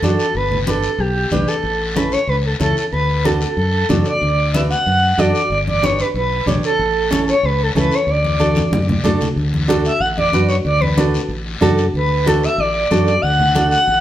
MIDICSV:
0, 0, Header, 1, 5, 480
1, 0, Start_track
1, 0, Key_signature, 2, "major"
1, 0, Tempo, 322061
1, 523, Time_signature, 4, 2, 24, 8
1, 20872, End_track
2, 0, Start_track
2, 0, Title_t, "Soft synth lead"
2, 0, Program_c, 0, 80
2, 0, Note_on_c, 0, 69, 86
2, 273, Note_off_c, 0, 69, 0
2, 282, Note_on_c, 0, 69, 80
2, 505, Note_off_c, 0, 69, 0
2, 538, Note_on_c, 0, 71, 88
2, 754, Note_off_c, 0, 71, 0
2, 761, Note_on_c, 0, 71, 85
2, 869, Note_off_c, 0, 71, 0
2, 1021, Note_on_c, 0, 69, 84
2, 1487, Note_on_c, 0, 67, 85
2, 1509, Note_off_c, 0, 69, 0
2, 2193, Note_off_c, 0, 67, 0
2, 2202, Note_on_c, 0, 69, 88
2, 2923, Note_on_c, 0, 71, 86
2, 2945, Note_off_c, 0, 69, 0
2, 3156, Note_off_c, 0, 71, 0
2, 3165, Note_on_c, 0, 73, 90
2, 3386, Note_off_c, 0, 73, 0
2, 3406, Note_on_c, 0, 71, 92
2, 3512, Note_off_c, 0, 71, 0
2, 3661, Note_on_c, 0, 69, 86
2, 3764, Note_off_c, 0, 69, 0
2, 3891, Note_on_c, 0, 69, 97
2, 4109, Note_off_c, 0, 69, 0
2, 4147, Note_on_c, 0, 69, 87
2, 4249, Note_off_c, 0, 69, 0
2, 4349, Note_on_c, 0, 71, 95
2, 4845, Note_on_c, 0, 69, 86
2, 4868, Note_off_c, 0, 71, 0
2, 5323, Note_off_c, 0, 69, 0
2, 5338, Note_on_c, 0, 69, 90
2, 5776, Note_off_c, 0, 69, 0
2, 6061, Note_on_c, 0, 74, 100
2, 6722, Note_off_c, 0, 74, 0
2, 6760, Note_on_c, 0, 76, 93
2, 6869, Note_off_c, 0, 76, 0
2, 7003, Note_on_c, 0, 78, 116
2, 7732, Note_on_c, 0, 74, 99
2, 7754, Note_off_c, 0, 78, 0
2, 7958, Note_off_c, 0, 74, 0
2, 7967, Note_on_c, 0, 74, 93
2, 8188, Note_off_c, 0, 74, 0
2, 8216, Note_on_c, 0, 74, 93
2, 8321, Note_off_c, 0, 74, 0
2, 8453, Note_on_c, 0, 74, 93
2, 8706, Note_on_c, 0, 73, 98
2, 8728, Note_off_c, 0, 74, 0
2, 8935, Note_off_c, 0, 73, 0
2, 8952, Note_on_c, 0, 71, 96
2, 9053, Note_off_c, 0, 71, 0
2, 9189, Note_on_c, 0, 71, 88
2, 9624, Note_off_c, 0, 71, 0
2, 9900, Note_on_c, 0, 69, 100
2, 10793, Note_off_c, 0, 69, 0
2, 10857, Note_on_c, 0, 73, 91
2, 11103, Note_on_c, 0, 71, 87
2, 11126, Note_off_c, 0, 73, 0
2, 11334, Note_off_c, 0, 71, 0
2, 11371, Note_on_c, 0, 69, 86
2, 11469, Note_off_c, 0, 69, 0
2, 11590, Note_on_c, 0, 71, 90
2, 11843, Note_on_c, 0, 73, 86
2, 11865, Note_off_c, 0, 71, 0
2, 12077, Note_on_c, 0, 74, 97
2, 12099, Note_off_c, 0, 73, 0
2, 13501, Note_off_c, 0, 74, 0
2, 14685, Note_on_c, 0, 76, 104
2, 14898, Note_off_c, 0, 76, 0
2, 14907, Note_on_c, 0, 78, 100
2, 15019, Note_off_c, 0, 78, 0
2, 15153, Note_on_c, 0, 74, 101
2, 15604, Note_off_c, 0, 74, 0
2, 15623, Note_on_c, 0, 73, 86
2, 15735, Note_off_c, 0, 73, 0
2, 15869, Note_on_c, 0, 74, 98
2, 16107, Note_on_c, 0, 71, 84
2, 16129, Note_off_c, 0, 74, 0
2, 16371, Note_on_c, 0, 69, 71
2, 16393, Note_off_c, 0, 71, 0
2, 16847, Note_off_c, 0, 69, 0
2, 17824, Note_on_c, 0, 71, 94
2, 18289, Note_on_c, 0, 69, 92
2, 18311, Note_off_c, 0, 71, 0
2, 18525, Note_off_c, 0, 69, 0
2, 18535, Note_on_c, 0, 76, 104
2, 18774, Note_on_c, 0, 74, 100
2, 18796, Note_off_c, 0, 76, 0
2, 19462, Note_off_c, 0, 74, 0
2, 19471, Note_on_c, 0, 74, 96
2, 19688, Note_off_c, 0, 74, 0
2, 19697, Note_on_c, 0, 78, 115
2, 20377, Note_off_c, 0, 78, 0
2, 20417, Note_on_c, 0, 78, 112
2, 20872, Note_off_c, 0, 78, 0
2, 20872, End_track
3, 0, Start_track
3, 0, Title_t, "Nylon-string guitar"
3, 0, Program_c, 1, 24
3, 50, Note_on_c, 1, 62, 69
3, 57, Note_on_c, 1, 66, 66
3, 60, Note_on_c, 1, 69, 79
3, 382, Note_off_c, 1, 62, 0
3, 385, Note_off_c, 1, 66, 0
3, 387, Note_off_c, 1, 69, 0
3, 999, Note_on_c, 1, 62, 65
3, 1003, Note_on_c, 1, 67, 59
3, 1010, Note_on_c, 1, 71, 74
3, 1337, Note_off_c, 1, 62, 0
3, 1338, Note_off_c, 1, 67, 0
3, 1340, Note_off_c, 1, 71, 0
3, 1960, Note_on_c, 1, 62, 70
3, 1967, Note_on_c, 1, 67, 61
3, 1977, Note_on_c, 1, 71, 76
3, 2297, Note_off_c, 1, 62, 0
3, 2299, Note_off_c, 1, 67, 0
3, 2305, Note_off_c, 1, 71, 0
3, 2913, Note_on_c, 1, 61, 67
3, 2925, Note_on_c, 1, 64, 65
3, 2927, Note_on_c, 1, 69, 76
3, 3254, Note_off_c, 1, 61, 0
3, 3256, Note_off_c, 1, 64, 0
3, 3260, Note_off_c, 1, 69, 0
3, 3870, Note_on_c, 1, 61, 72
3, 3881, Note_on_c, 1, 64, 65
3, 3886, Note_on_c, 1, 69, 77
3, 4212, Note_off_c, 1, 61, 0
3, 4215, Note_off_c, 1, 64, 0
3, 4219, Note_off_c, 1, 69, 0
3, 4832, Note_on_c, 1, 62, 68
3, 4844, Note_on_c, 1, 66, 63
3, 4845, Note_on_c, 1, 69, 72
3, 5173, Note_off_c, 1, 62, 0
3, 5176, Note_off_c, 1, 66, 0
3, 5179, Note_off_c, 1, 69, 0
3, 5801, Note_on_c, 1, 62, 67
3, 5807, Note_on_c, 1, 66, 64
3, 5812, Note_on_c, 1, 69, 75
3, 6137, Note_off_c, 1, 62, 0
3, 6139, Note_off_c, 1, 66, 0
3, 6142, Note_off_c, 1, 69, 0
3, 6775, Note_on_c, 1, 62, 63
3, 6788, Note_on_c, 1, 66, 57
3, 6792, Note_on_c, 1, 71, 72
3, 7105, Note_off_c, 1, 62, 0
3, 7108, Note_off_c, 1, 66, 0
3, 7113, Note_off_c, 1, 71, 0
3, 7723, Note_on_c, 1, 62, 70
3, 7727, Note_on_c, 1, 66, 65
3, 7735, Note_on_c, 1, 69, 78
3, 8059, Note_off_c, 1, 62, 0
3, 8062, Note_off_c, 1, 66, 0
3, 8062, Note_off_c, 1, 69, 0
3, 8682, Note_on_c, 1, 62, 68
3, 8687, Note_on_c, 1, 67, 60
3, 8695, Note_on_c, 1, 71, 72
3, 9019, Note_off_c, 1, 62, 0
3, 9022, Note_off_c, 1, 71, 0
3, 9023, Note_off_c, 1, 67, 0
3, 9639, Note_on_c, 1, 62, 69
3, 9649, Note_on_c, 1, 67, 63
3, 9661, Note_on_c, 1, 73, 81
3, 9978, Note_off_c, 1, 62, 0
3, 9983, Note_off_c, 1, 67, 0
3, 9989, Note_off_c, 1, 73, 0
3, 10590, Note_on_c, 1, 61, 83
3, 10595, Note_on_c, 1, 64, 75
3, 10603, Note_on_c, 1, 69, 94
3, 10934, Note_off_c, 1, 61, 0
3, 10937, Note_off_c, 1, 64, 0
3, 10938, Note_off_c, 1, 69, 0
3, 11555, Note_on_c, 1, 61, 72
3, 11564, Note_on_c, 1, 64, 68
3, 11573, Note_on_c, 1, 69, 76
3, 11896, Note_off_c, 1, 61, 0
3, 11901, Note_off_c, 1, 64, 0
3, 11905, Note_off_c, 1, 69, 0
3, 12508, Note_on_c, 1, 62, 68
3, 12517, Note_on_c, 1, 66, 61
3, 12521, Note_on_c, 1, 69, 72
3, 12853, Note_off_c, 1, 62, 0
3, 12858, Note_off_c, 1, 66, 0
3, 12858, Note_off_c, 1, 69, 0
3, 13471, Note_on_c, 1, 62, 86
3, 13475, Note_on_c, 1, 66, 83
3, 13489, Note_on_c, 1, 69, 94
3, 13815, Note_off_c, 1, 62, 0
3, 13815, Note_off_c, 1, 66, 0
3, 13823, Note_off_c, 1, 69, 0
3, 14427, Note_on_c, 1, 62, 77
3, 14432, Note_on_c, 1, 66, 79
3, 14445, Note_on_c, 1, 69, 88
3, 14773, Note_off_c, 1, 62, 0
3, 14773, Note_off_c, 1, 66, 0
3, 14781, Note_off_c, 1, 69, 0
3, 15393, Note_on_c, 1, 62, 71
3, 15402, Note_on_c, 1, 66, 66
3, 15409, Note_on_c, 1, 71, 77
3, 15735, Note_off_c, 1, 62, 0
3, 15739, Note_off_c, 1, 66, 0
3, 15742, Note_off_c, 1, 71, 0
3, 16352, Note_on_c, 1, 62, 74
3, 16357, Note_on_c, 1, 66, 63
3, 16360, Note_on_c, 1, 71, 78
3, 16694, Note_off_c, 1, 62, 0
3, 16695, Note_off_c, 1, 66, 0
3, 16698, Note_off_c, 1, 71, 0
3, 17301, Note_on_c, 1, 62, 89
3, 17312, Note_on_c, 1, 66, 81
3, 17317, Note_on_c, 1, 69, 104
3, 17648, Note_off_c, 1, 62, 0
3, 17651, Note_off_c, 1, 66, 0
3, 17655, Note_off_c, 1, 69, 0
3, 18270, Note_on_c, 1, 62, 69
3, 18280, Note_on_c, 1, 66, 63
3, 18284, Note_on_c, 1, 69, 77
3, 18612, Note_off_c, 1, 62, 0
3, 18613, Note_off_c, 1, 66, 0
3, 18618, Note_off_c, 1, 69, 0
3, 19235, Note_on_c, 1, 62, 76
3, 19241, Note_on_c, 1, 66, 65
3, 19248, Note_on_c, 1, 69, 85
3, 19575, Note_off_c, 1, 62, 0
3, 19575, Note_off_c, 1, 66, 0
3, 19576, Note_off_c, 1, 69, 0
3, 20191, Note_on_c, 1, 62, 69
3, 20197, Note_on_c, 1, 66, 64
3, 20200, Note_on_c, 1, 69, 76
3, 20531, Note_off_c, 1, 62, 0
3, 20533, Note_off_c, 1, 66, 0
3, 20535, Note_off_c, 1, 69, 0
3, 20872, End_track
4, 0, Start_track
4, 0, Title_t, "Fingered electric bass"
4, 0, Program_c, 2, 33
4, 34, Note_on_c, 2, 42, 89
4, 230, Note_off_c, 2, 42, 0
4, 516, Note_on_c, 2, 31, 84
4, 1286, Note_off_c, 2, 31, 0
4, 1467, Note_on_c, 2, 35, 88
4, 1856, Note_off_c, 2, 35, 0
4, 1953, Note_on_c, 2, 35, 92
4, 2148, Note_off_c, 2, 35, 0
4, 2435, Note_on_c, 2, 33, 84
4, 3205, Note_off_c, 2, 33, 0
4, 3388, Note_on_c, 2, 37, 83
4, 3777, Note_off_c, 2, 37, 0
4, 3876, Note_on_c, 2, 37, 91
4, 4070, Note_off_c, 2, 37, 0
4, 4361, Note_on_c, 2, 38, 88
4, 5129, Note_off_c, 2, 38, 0
4, 5318, Note_on_c, 2, 42, 85
4, 5703, Note_off_c, 2, 42, 0
4, 5801, Note_on_c, 2, 42, 88
4, 5993, Note_off_c, 2, 42, 0
4, 6283, Note_on_c, 2, 38, 88
4, 7050, Note_off_c, 2, 38, 0
4, 7249, Note_on_c, 2, 42, 90
4, 7630, Note_off_c, 2, 42, 0
4, 7714, Note_on_c, 2, 42, 90
4, 7909, Note_off_c, 2, 42, 0
4, 8194, Note_on_c, 2, 31, 85
4, 8966, Note_off_c, 2, 31, 0
4, 9153, Note_on_c, 2, 35, 83
4, 9541, Note_off_c, 2, 35, 0
4, 9628, Note_on_c, 2, 35, 89
4, 9827, Note_off_c, 2, 35, 0
4, 10123, Note_on_c, 2, 33, 87
4, 10892, Note_off_c, 2, 33, 0
4, 11077, Note_on_c, 2, 37, 90
4, 11464, Note_off_c, 2, 37, 0
4, 11550, Note_on_c, 2, 37, 93
4, 11748, Note_off_c, 2, 37, 0
4, 12024, Note_on_c, 2, 38, 90
4, 12801, Note_off_c, 2, 38, 0
4, 12990, Note_on_c, 2, 42, 90
4, 13380, Note_off_c, 2, 42, 0
4, 13467, Note_on_c, 2, 42, 88
4, 13667, Note_off_c, 2, 42, 0
4, 13953, Note_on_c, 2, 38, 91
4, 14726, Note_off_c, 2, 38, 0
4, 14908, Note_on_c, 2, 33, 89
4, 15298, Note_off_c, 2, 33, 0
4, 15387, Note_on_c, 2, 42, 94
4, 15778, Note_off_c, 2, 42, 0
4, 15869, Note_on_c, 2, 38, 92
4, 16642, Note_off_c, 2, 38, 0
4, 16818, Note_on_c, 2, 33, 96
4, 17212, Note_off_c, 2, 33, 0
4, 17307, Note_on_c, 2, 42, 94
4, 17697, Note_off_c, 2, 42, 0
4, 17792, Note_on_c, 2, 38, 90
4, 18563, Note_off_c, 2, 38, 0
4, 18751, Note_on_c, 2, 33, 101
4, 19139, Note_off_c, 2, 33, 0
4, 19237, Note_on_c, 2, 42, 94
4, 19622, Note_off_c, 2, 42, 0
4, 19718, Note_on_c, 2, 38, 96
4, 20486, Note_off_c, 2, 38, 0
4, 20679, Note_on_c, 2, 33, 97
4, 20872, Note_off_c, 2, 33, 0
4, 20872, End_track
5, 0, Start_track
5, 0, Title_t, "Drums"
5, 38, Note_on_c, 9, 63, 84
5, 46, Note_on_c, 9, 73, 71
5, 187, Note_off_c, 9, 63, 0
5, 195, Note_off_c, 9, 73, 0
5, 288, Note_on_c, 9, 73, 62
5, 437, Note_off_c, 9, 73, 0
5, 520, Note_on_c, 9, 74, 67
5, 527, Note_on_c, 9, 63, 30
5, 669, Note_off_c, 9, 74, 0
5, 676, Note_off_c, 9, 63, 0
5, 767, Note_on_c, 9, 64, 70
5, 916, Note_off_c, 9, 64, 0
5, 996, Note_on_c, 9, 73, 69
5, 1000, Note_on_c, 9, 63, 86
5, 1145, Note_off_c, 9, 73, 0
5, 1149, Note_off_c, 9, 63, 0
5, 1231, Note_on_c, 9, 73, 65
5, 1380, Note_off_c, 9, 73, 0
5, 1468, Note_on_c, 9, 74, 60
5, 1493, Note_on_c, 9, 63, 32
5, 1617, Note_off_c, 9, 74, 0
5, 1642, Note_off_c, 9, 63, 0
5, 1943, Note_on_c, 9, 73, 69
5, 1976, Note_on_c, 9, 63, 84
5, 1976, Note_on_c, 9, 64, 85
5, 2092, Note_off_c, 9, 73, 0
5, 2125, Note_off_c, 9, 63, 0
5, 2125, Note_off_c, 9, 64, 0
5, 2202, Note_on_c, 9, 73, 59
5, 2351, Note_off_c, 9, 73, 0
5, 2427, Note_on_c, 9, 74, 69
5, 2445, Note_on_c, 9, 63, 32
5, 2576, Note_off_c, 9, 74, 0
5, 2594, Note_off_c, 9, 63, 0
5, 2918, Note_on_c, 9, 73, 71
5, 2929, Note_on_c, 9, 63, 90
5, 3067, Note_off_c, 9, 73, 0
5, 3078, Note_off_c, 9, 63, 0
5, 3159, Note_on_c, 9, 73, 68
5, 3308, Note_off_c, 9, 73, 0
5, 3391, Note_on_c, 9, 74, 65
5, 3416, Note_on_c, 9, 63, 34
5, 3540, Note_off_c, 9, 74, 0
5, 3565, Note_off_c, 9, 63, 0
5, 3871, Note_on_c, 9, 73, 74
5, 3884, Note_on_c, 9, 63, 82
5, 4020, Note_off_c, 9, 73, 0
5, 4033, Note_off_c, 9, 63, 0
5, 4128, Note_on_c, 9, 73, 66
5, 4277, Note_off_c, 9, 73, 0
5, 4360, Note_on_c, 9, 74, 66
5, 4374, Note_on_c, 9, 63, 31
5, 4510, Note_off_c, 9, 74, 0
5, 4523, Note_off_c, 9, 63, 0
5, 4850, Note_on_c, 9, 63, 91
5, 4850, Note_on_c, 9, 73, 65
5, 4999, Note_off_c, 9, 63, 0
5, 4999, Note_off_c, 9, 73, 0
5, 5078, Note_on_c, 9, 73, 64
5, 5227, Note_off_c, 9, 73, 0
5, 5324, Note_on_c, 9, 74, 66
5, 5343, Note_on_c, 9, 63, 32
5, 5473, Note_off_c, 9, 74, 0
5, 5492, Note_off_c, 9, 63, 0
5, 5797, Note_on_c, 9, 73, 73
5, 5814, Note_on_c, 9, 63, 88
5, 5814, Note_on_c, 9, 64, 88
5, 5946, Note_off_c, 9, 73, 0
5, 5963, Note_off_c, 9, 63, 0
5, 5963, Note_off_c, 9, 64, 0
5, 6028, Note_on_c, 9, 73, 62
5, 6177, Note_off_c, 9, 73, 0
5, 6281, Note_on_c, 9, 74, 66
5, 6302, Note_on_c, 9, 63, 32
5, 6430, Note_off_c, 9, 74, 0
5, 6451, Note_off_c, 9, 63, 0
5, 6769, Note_on_c, 9, 73, 63
5, 6774, Note_on_c, 9, 63, 83
5, 6918, Note_off_c, 9, 73, 0
5, 6923, Note_off_c, 9, 63, 0
5, 7014, Note_on_c, 9, 73, 61
5, 7163, Note_off_c, 9, 73, 0
5, 7246, Note_on_c, 9, 74, 66
5, 7262, Note_on_c, 9, 63, 33
5, 7395, Note_off_c, 9, 74, 0
5, 7411, Note_off_c, 9, 63, 0
5, 7727, Note_on_c, 9, 73, 75
5, 7742, Note_on_c, 9, 63, 88
5, 7876, Note_off_c, 9, 73, 0
5, 7891, Note_off_c, 9, 63, 0
5, 7973, Note_on_c, 9, 73, 65
5, 8122, Note_off_c, 9, 73, 0
5, 8207, Note_on_c, 9, 74, 65
5, 8228, Note_on_c, 9, 63, 34
5, 8356, Note_off_c, 9, 74, 0
5, 8377, Note_off_c, 9, 63, 0
5, 8457, Note_on_c, 9, 63, 70
5, 8606, Note_off_c, 9, 63, 0
5, 8691, Note_on_c, 9, 73, 67
5, 8700, Note_on_c, 9, 63, 89
5, 8840, Note_off_c, 9, 73, 0
5, 8849, Note_off_c, 9, 63, 0
5, 8924, Note_on_c, 9, 73, 67
5, 9073, Note_off_c, 9, 73, 0
5, 9174, Note_on_c, 9, 74, 63
5, 9186, Note_on_c, 9, 63, 33
5, 9323, Note_off_c, 9, 74, 0
5, 9335, Note_off_c, 9, 63, 0
5, 9653, Note_on_c, 9, 73, 69
5, 9658, Note_on_c, 9, 63, 83
5, 9658, Note_on_c, 9, 64, 87
5, 9803, Note_off_c, 9, 73, 0
5, 9807, Note_off_c, 9, 63, 0
5, 9807, Note_off_c, 9, 64, 0
5, 9885, Note_on_c, 9, 73, 66
5, 10034, Note_off_c, 9, 73, 0
5, 10133, Note_on_c, 9, 74, 66
5, 10148, Note_on_c, 9, 63, 32
5, 10282, Note_off_c, 9, 74, 0
5, 10297, Note_off_c, 9, 63, 0
5, 10612, Note_on_c, 9, 73, 63
5, 10619, Note_on_c, 9, 63, 89
5, 10761, Note_off_c, 9, 73, 0
5, 10768, Note_off_c, 9, 63, 0
5, 10850, Note_on_c, 9, 73, 64
5, 10999, Note_off_c, 9, 73, 0
5, 11095, Note_on_c, 9, 74, 66
5, 11101, Note_on_c, 9, 63, 35
5, 11244, Note_off_c, 9, 74, 0
5, 11250, Note_off_c, 9, 63, 0
5, 11569, Note_on_c, 9, 63, 84
5, 11581, Note_on_c, 9, 73, 69
5, 11718, Note_off_c, 9, 63, 0
5, 11730, Note_off_c, 9, 73, 0
5, 11796, Note_on_c, 9, 73, 65
5, 11945, Note_off_c, 9, 73, 0
5, 12041, Note_on_c, 9, 74, 67
5, 12053, Note_on_c, 9, 63, 33
5, 12190, Note_off_c, 9, 74, 0
5, 12202, Note_off_c, 9, 63, 0
5, 12289, Note_on_c, 9, 63, 65
5, 12438, Note_off_c, 9, 63, 0
5, 12514, Note_on_c, 9, 73, 65
5, 12535, Note_on_c, 9, 63, 69
5, 12663, Note_off_c, 9, 73, 0
5, 12684, Note_off_c, 9, 63, 0
5, 12744, Note_on_c, 9, 73, 62
5, 12768, Note_on_c, 9, 63, 92
5, 12893, Note_off_c, 9, 73, 0
5, 12917, Note_off_c, 9, 63, 0
5, 12985, Note_on_c, 9, 74, 64
5, 13009, Note_on_c, 9, 64, 92
5, 13134, Note_off_c, 9, 74, 0
5, 13158, Note_off_c, 9, 64, 0
5, 13252, Note_on_c, 9, 64, 98
5, 13401, Note_off_c, 9, 64, 0
5, 13469, Note_on_c, 9, 73, 72
5, 13496, Note_on_c, 9, 64, 103
5, 13618, Note_off_c, 9, 73, 0
5, 13645, Note_off_c, 9, 64, 0
5, 13722, Note_on_c, 9, 73, 65
5, 13738, Note_on_c, 9, 64, 83
5, 13871, Note_off_c, 9, 73, 0
5, 13887, Note_off_c, 9, 64, 0
5, 13972, Note_on_c, 9, 74, 71
5, 13989, Note_on_c, 9, 63, 31
5, 14121, Note_off_c, 9, 74, 0
5, 14138, Note_off_c, 9, 63, 0
5, 14214, Note_on_c, 9, 63, 73
5, 14363, Note_off_c, 9, 63, 0
5, 14444, Note_on_c, 9, 73, 68
5, 14461, Note_on_c, 9, 63, 90
5, 14593, Note_off_c, 9, 73, 0
5, 14610, Note_off_c, 9, 63, 0
5, 14679, Note_on_c, 9, 73, 65
5, 14828, Note_off_c, 9, 73, 0
5, 14927, Note_on_c, 9, 74, 67
5, 14935, Note_on_c, 9, 63, 34
5, 15076, Note_off_c, 9, 74, 0
5, 15084, Note_off_c, 9, 63, 0
5, 15169, Note_on_c, 9, 63, 68
5, 15318, Note_off_c, 9, 63, 0
5, 15401, Note_on_c, 9, 63, 86
5, 15401, Note_on_c, 9, 73, 70
5, 15550, Note_off_c, 9, 63, 0
5, 15550, Note_off_c, 9, 73, 0
5, 15629, Note_on_c, 9, 73, 65
5, 15778, Note_off_c, 9, 73, 0
5, 15871, Note_on_c, 9, 74, 71
5, 15886, Note_on_c, 9, 63, 33
5, 16020, Note_off_c, 9, 74, 0
5, 16035, Note_off_c, 9, 63, 0
5, 16125, Note_on_c, 9, 63, 74
5, 16274, Note_off_c, 9, 63, 0
5, 16357, Note_on_c, 9, 73, 69
5, 16360, Note_on_c, 9, 63, 88
5, 16506, Note_off_c, 9, 73, 0
5, 16509, Note_off_c, 9, 63, 0
5, 16607, Note_on_c, 9, 73, 68
5, 16756, Note_off_c, 9, 73, 0
5, 16836, Note_on_c, 9, 74, 65
5, 16854, Note_on_c, 9, 63, 33
5, 16985, Note_off_c, 9, 74, 0
5, 17004, Note_off_c, 9, 63, 0
5, 17325, Note_on_c, 9, 73, 71
5, 17326, Note_on_c, 9, 63, 87
5, 17326, Note_on_c, 9, 64, 82
5, 17474, Note_off_c, 9, 73, 0
5, 17475, Note_off_c, 9, 63, 0
5, 17475, Note_off_c, 9, 64, 0
5, 17551, Note_on_c, 9, 73, 63
5, 17700, Note_off_c, 9, 73, 0
5, 17814, Note_on_c, 9, 63, 34
5, 17815, Note_on_c, 9, 74, 71
5, 17963, Note_off_c, 9, 63, 0
5, 17964, Note_off_c, 9, 74, 0
5, 18294, Note_on_c, 9, 63, 85
5, 18294, Note_on_c, 9, 73, 70
5, 18443, Note_off_c, 9, 63, 0
5, 18443, Note_off_c, 9, 73, 0
5, 18533, Note_on_c, 9, 73, 68
5, 18682, Note_off_c, 9, 73, 0
5, 18761, Note_on_c, 9, 74, 67
5, 18780, Note_on_c, 9, 63, 37
5, 18910, Note_off_c, 9, 74, 0
5, 18929, Note_off_c, 9, 63, 0
5, 19242, Note_on_c, 9, 73, 70
5, 19250, Note_on_c, 9, 63, 88
5, 19391, Note_off_c, 9, 73, 0
5, 19399, Note_off_c, 9, 63, 0
5, 19478, Note_on_c, 9, 73, 61
5, 19627, Note_off_c, 9, 73, 0
5, 19718, Note_on_c, 9, 74, 70
5, 19726, Note_on_c, 9, 63, 34
5, 19867, Note_off_c, 9, 74, 0
5, 19875, Note_off_c, 9, 63, 0
5, 19964, Note_on_c, 9, 64, 75
5, 20113, Note_off_c, 9, 64, 0
5, 20191, Note_on_c, 9, 73, 70
5, 20207, Note_on_c, 9, 63, 85
5, 20340, Note_off_c, 9, 73, 0
5, 20356, Note_off_c, 9, 63, 0
5, 20439, Note_on_c, 9, 73, 71
5, 20588, Note_off_c, 9, 73, 0
5, 20689, Note_on_c, 9, 63, 34
5, 20692, Note_on_c, 9, 74, 72
5, 20838, Note_off_c, 9, 63, 0
5, 20841, Note_off_c, 9, 74, 0
5, 20872, End_track
0, 0, End_of_file